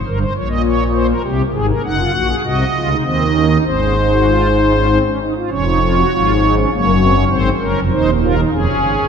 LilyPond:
<<
  \new Staff \with { instrumentName = "Pipe organ" } { \time 3/4 \key des \major \tempo 4 = 99 << { bes'16 c''16 des''16 ees''16 des''8 c''16 bes'16 g'8 aes'16 bes'16 | ges''4 ees''4 ees''4 | c''2~ c''8 r8 | des''2 des''4 |
c''8 bes'8 c''8 bes'8 aes'4 | } \\ { r2. | ees'16 f'16 ges'16 aes'16 ges'8 f'16 ees'16 c'8 des'16 ees'16 | c'16 des'16 ees'16 ges'16 f'8 ees'16 des'16 c'16 des'16 ees'16 f'16 | des'16 ees'16 f'16 ges'16 f'8 ees'16 des'16 bes8 c'16 des'16 |
c'8 des'8 ees'8 f'16 ees'16 des'4 | } >> }
  \new Staff \with { instrumentName = "Pipe organ" } { \clef bass \time 3/4 \key des \major <g,, g,>8 <bes,, bes,>4. <c, c>8 <aes,, aes,>8 | <ges,, ges,>8 <bes,, bes,>8 <c, c>8 <des, des>8 <ees, ees>4 | <aes,, aes,>2~ <aes,, aes,>8 r8 | <f,, f,>4 <aes,, aes,>4 <ges,, ges,>4 |
<aes,, aes,>8 <ges,, ges,>16 <f,, f,>16 <ees,, ees,>4 <f,, f,>16 <ges,, ges,>16 <aes,, aes,>16 <f,, f,>16 | }
>>